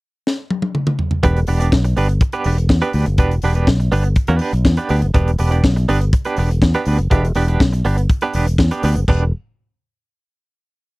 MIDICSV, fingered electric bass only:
0, 0, Header, 1, 2, 480
1, 0, Start_track
1, 0, Key_signature, 1, "minor"
1, 0, Tempo, 489796
1, 1212, Time_signature, 4, 2, 24, 8
1, 10772, End_track
2, 0, Start_track
2, 0, Title_t, "Fingered electric bass"
2, 0, Program_c, 0, 33
2, 1213, Note_on_c, 0, 28, 111
2, 1415, Note_off_c, 0, 28, 0
2, 1450, Note_on_c, 0, 28, 99
2, 1653, Note_off_c, 0, 28, 0
2, 1690, Note_on_c, 0, 35, 92
2, 1892, Note_off_c, 0, 35, 0
2, 1931, Note_on_c, 0, 31, 87
2, 2133, Note_off_c, 0, 31, 0
2, 2407, Note_on_c, 0, 28, 86
2, 2610, Note_off_c, 0, 28, 0
2, 2640, Note_on_c, 0, 40, 85
2, 2744, Note_off_c, 0, 40, 0
2, 2882, Note_on_c, 0, 38, 88
2, 2985, Note_off_c, 0, 38, 0
2, 2998, Note_on_c, 0, 30, 77
2, 3119, Note_off_c, 0, 30, 0
2, 3119, Note_on_c, 0, 28, 109
2, 3325, Note_off_c, 0, 28, 0
2, 3364, Note_on_c, 0, 28, 94
2, 3567, Note_off_c, 0, 28, 0
2, 3599, Note_on_c, 0, 35, 83
2, 3805, Note_off_c, 0, 35, 0
2, 3842, Note_on_c, 0, 31, 86
2, 4046, Note_off_c, 0, 31, 0
2, 4199, Note_on_c, 0, 40, 92
2, 4302, Note_off_c, 0, 40, 0
2, 4439, Note_on_c, 0, 35, 87
2, 4543, Note_off_c, 0, 35, 0
2, 4557, Note_on_c, 0, 40, 96
2, 4661, Note_off_c, 0, 40, 0
2, 4803, Note_on_c, 0, 38, 85
2, 4905, Note_off_c, 0, 38, 0
2, 4923, Note_on_c, 0, 30, 77
2, 5025, Note_off_c, 0, 30, 0
2, 5042, Note_on_c, 0, 28, 105
2, 5247, Note_off_c, 0, 28, 0
2, 5285, Note_on_c, 0, 28, 105
2, 5489, Note_off_c, 0, 28, 0
2, 5527, Note_on_c, 0, 35, 94
2, 5730, Note_off_c, 0, 35, 0
2, 5772, Note_on_c, 0, 31, 87
2, 5973, Note_off_c, 0, 31, 0
2, 6250, Note_on_c, 0, 28, 89
2, 6453, Note_off_c, 0, 28, 0
2, 6488, Note_on_c, 0, 40, 102
2, 6590, Note_off_c, 0, 40, 0
2, 6728, Note_on_c, 0, 38, 83
2, 6830, Note_off_c, 0, 38, 0
2, 6849, Note_on_c, 0, 30, 80
2, 6951, Note_off_c, 0, 30, 0
2, 6970, Note_on_c, 0, 28, 114
2, 7174, Note_off_c, 0, 28, 0
2, 7208, Note_on_c, 0, 28, 101
2, 7413, Note_off_c, 0, 28, 0
2, 7454, Note_on_c, 0, 35, 80
2, 7657, Note_off_c, 0, 35, 0
2, 7694, Note_on_c, 0, 31, 97
2, 7898, Note_off_c, 0, 31, 0
2, 8179, Note_on_c, 0, 28, 74
2, 8381, Note_off_c, 0, 28, 0
2, 8414, Note_on_c, 0, 40, 95
2, 8517, Note_off_c, 0, 40, 0
2, 8659, Note_on_c, 0, 38, 96
2, 8760, Note_off_c, 0, 38, 0
2, 8782, Note_on_c, 0, 30, 90
2, 8882, Note_off_c, 0, 30, 0
2, 8899, Note_on_c, 0, 28, 96
2, 9122, Note_off_c, 0, 28, 0
2, 10772, End_track
0, 0, End_of_file